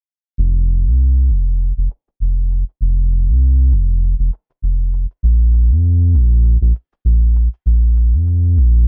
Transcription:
0.38 F1, cabasa
0.69 cabasa
0.86 C2, cabasa
0.99 cabasa
1.17 cabasa
1.29 F1, cabasa
1.47 cabasa
1.60 cabasa
1.77 F1, cabasa
1.91 cabasa
2.08 cabasa
2.20 F1, cabasa
2.51 cabasa
2.69 cabasa
2.81 F1, cabasa
3.12 cabasa
3.28 C2, cabasa
3.42 cabasa
3.59 cabasa
3.72 F1, cabasa
3.89 cabasa
4.03 cabasa
4.19 F1, cabasa
4.33 cabasa
4.50 cabasa
4.62 F1, cabasa
4.93 cabasa
5.11 cabasa
5.23 A#1, cabasa
5.54 cabasa
5.70 F2, cabasa
5.84 cabasa
6.02 cabasa
6.14 A#1, cabasa
6.32 cabasa
6.45 cabasa
6.62 A#1, cabasa
6.75 cabasa
6.93 cabasa
7.05 A#1, cabasa
7.36 cabasa
7.53 cabasa
7.66 A#1, cabasa
7.96 cabasa
8.13 F2, cabasa
8.27 cabasa
8.44 cabasa
8.57 A#1, cabasa
8.75 cabasa

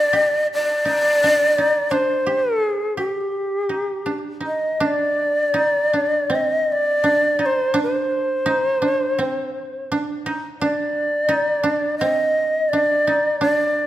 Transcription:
Already playing: D4 G4 D5
0.13 G4
0.54 D5
0.85 D#4
1.24 D4
1.58 D#4
1.91 D4 C5
2.26 G4
2.62 G#4
2.97 G4
3.69 D#4
4.06 D4
4.41 D#4
4.46 D#5
4.80 D4
4.86 D5
5.54 D#4
5.93 D4
6.30 C4
6.35 D#5
6.72 D5
7.04 D4
7.39 D#4
7.46 C5
7.74 D4
7.83 C5
8.46 D#4
8.82 D4
9.19 C4
9.92 D4
10.26 D#4
10.61 D4 D5
11.29 D#4
11.63 D4
11.98 C4 D#5
12.69 D5
12.73 D4
13.07 D#4
13.41 D4 D5

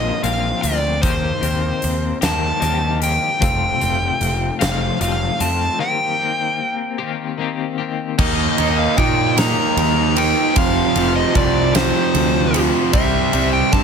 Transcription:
Already playing: A#1 A#2 F3 A#3 C4 F4 D#5
0.23 A#1 F3 A#3 C4 F4 F5, closed hi-hat
0.62 D2 A#3 C4 F4 D5, closed hi-hat
1.02 D#2 D#3 A#3 C4 G4 C5, kick, closed hi-hat
1.41 D#2 A#3 C4 G4, closed hi-hat
1.82 D#2, closed hi-hat
2.21 D#2 D#3 A#3 C4 G4 A5, snare, closed hi-hat
2.60 D#2 D#3 A#3 C4 G4, closed hi-hat
3.00 A#3 C4 G4 G5, closed hi-hat
3.39 F1 F2 C3 F3 A3 C4 F4 G5, kick, closed hi-hat
3.80 F1 F3 A3 C4 F4, closed hi-hat
4.21 F1, closed hi-hat
4.59 F1 F2 C3 F3 A3 C4 F4 F5, snare, closed hi-hat
4.99 F1 F3 A3 C4 F4 F5, closed hi-hat
5.39 F2 F3 A3 C4 F4 A5, closed hi-hat
5.79 D#3 A#3 C4 G4 G5
6.19 A#3 C4 G4
6.98 D#3 A#3 C4 G4
7.38 D#3 A#3 C4 G4
7.78 A#3 C4 G4
8.18 D#2 D#3 A#3 D#4 D#5, kick, crash
8.58 D#2 D#3 A#3 D#4, ride
8.79 F5
8.96 A#2 D#3 A#3 D#4 G5, kick, ride
9.36 D#3 A#3 D#4 A#5, snare, ride
9.77 D#2 A#5, ride
10.16 D#3 A#3 D#4 G5, ride
10.54 F1 F2 C3 F3 F5, kick, ride
10.94 F1 F2 C3 F3, ride
11.16 D#5
11.33 C2 F2 C3 F3 D5, kick, ride
11.73 F2 C3 F3 C5, snare, ride
12.14 D2, ride
12.53 F2 C3 F3, ride
12.93 C2 C3 G3 C4 E5, kick, ride
13.32 C2 C3 G3 C4, ride
13.53 G5
13.72 G2 C3 G3 C4 A5, kick, ride

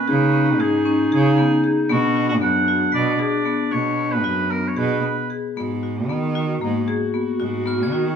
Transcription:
Already playing: B4 A#6 B6
0.08 C#3 D#4 G#4
0.34 C#4
0.60 G#2 G#4
0.86 C#4
1.12 C#3 G#4
1.38 B3
1.64 G#4
1.90 B2 B3 D4 F#4
2.16 F#4
2.29 F#4
2.41 F#2 B3 F#5
2.68 F#4
2.92 B2 B3 D5 B6
3.19 G#4 D5
3.45 B3
3.71 B2 F#4 C#5
3.98 B3
4.12 B4
4.24 F#2 F#4
4.50 B3 A#4
4.68 C#5
4.76 B2 G#4 B4
5.04 B3
5.30 G#4
5.56 G#2 B3 F#4
5.83 F#4
6.09 D#3 B3
6.35 F#4
6.61 G#2 A#3
6.88 G#4
7.14 B3
7.40 G#2 F#4
7.66 B3 F6
7.83 G#6
7.92 D#3 F#4

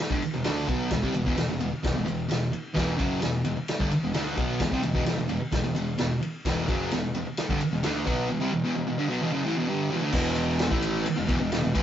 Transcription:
0.00 snare
0.10 G1 G2 D3, kick
0.22 ride, tambourine
0.34 E1 E2 B2
0.44 D2 D3 A3 D4, snare, ride, tambourine
0.68 B1 B2 F#3 B3, kick, ride, tambourine
0.91 E1 E2 B2, kick, snare, ride, tambourine
1.02 C2 C3 G3, kick
1.14 E1 E2 B2, ride, tambourine
1.25 E1 E2 B2, kick
1.36 E1 E2 B2, snare, ride, tambourine
1.49 E1 E2 B2
1.59 E2 B2, ride, tambourine
1.63 E1
1.72 muted distorted electric guitar stroke, muted picked electric bass stroke
1.83 E1 E2 B2, kick, snare, ride, tambourine
1.95 E1 E2 B2
2.05 E1 E2 B2, ride, tambourine
2.29 E1 E2 B2, snare, ride, tambourine
2.52 muted distorted electric guitar stroke, muted picked electric bass stroke, ride, tambourine
2.74 E1 E2 B2 E3, kick, snare, ride, tambourine
2.98 F#1 F#2 C#3 F#3, kick, ride, tambourine
3.21 E1 E2 B2, snare, ride, tambourine
3.45 E1 E2 B2, ride, tambourine
3.56 muted distorted electric guitar stroke
3.68 snare, ride, tambourine
3.79 G1 G2 D3, kick
3.91 ride, tambourine
4.03 E1 E2 B2
4.13 D2 D3 A3 D4, snare, ride, tambourine
4.37 B1 B2 F#3 B3, kick, ride, tambourine
4.60 E1 E2 B2, kick, snare, ride, tambourine
4.71 C2 C3 G3, kick
4.83 E1 E2 B2, ride, tambourine
4.94 E1 E2 B2, kick
5.05 E1 E2 B2, snare, ride, tambourine
5.17 E1 E2 B2
5.29 E1 E2 B2, ride, tambourine
5.40 muted distorted electric guitar stroke, muted picked electric bass stroke
5.52 E1 E2 B2, kick, snare, ride, tambourine
5.63 E1 E2 B2
5.75 E1 E2 B2, ride, tambourine
5.98 E1 E2 B2, snare, ride, tambourine
6.21 muted distorted electric guitar stroke, muted picked electric bass stroke, ride, tambourine
6.45 E1 E2 B2 E3, kick, snare, ride, tambourine
6.68 F#1 F#2 C#3 F#3, kick, ride, tambourine
6.91 E1 E2 B2, snare, ride, tambourine
7.14 E1 E2 B2, ride, tambourine
7.26 muted distorted electric guitar stroke, muted picked electric bass stroke
7.37 snare, ride
7.49 G1 G2 D3, kick
7.59 ride, tambourine
7.72 E1 E2 B2
7.83 D2 D3 A3 D4, snare, ride, tambourine
8.06 B1 B2 F#3 B3, kick, ride, tambourine
8.29 E2 B2
8.40 C3 G3
8.52 E2 B2
8.64 E2 B2
8.75 E2 B2
8.87 E2 B2
8.98 G2 D3
9.08 B2 F#3
9.21 E2 B2
9.32 F#2 C#3
9.44 A2 E3
9.56 E2 B2
9.68 G2 D3 G3
9.91 E2 B2
10.02 D3 A3
10.12 E1 E2 B2 E3, kick, crash
10.36 ride
10.59 snare, ride
10.71 A1 A2 E3 A3, kick
10.82 ride
11.05 muted distorted electric guitar stroke, muted picked electric bass stroke, ride
11.16 E1 E2 B2
11.27 E1 E2 B2, kick, ride
11.40 E1 E2 B2
11.52 E1 E2 B2, snare, ride
11.62 E1 E2 B2
11.74 A1 A2 E3, kick, ride

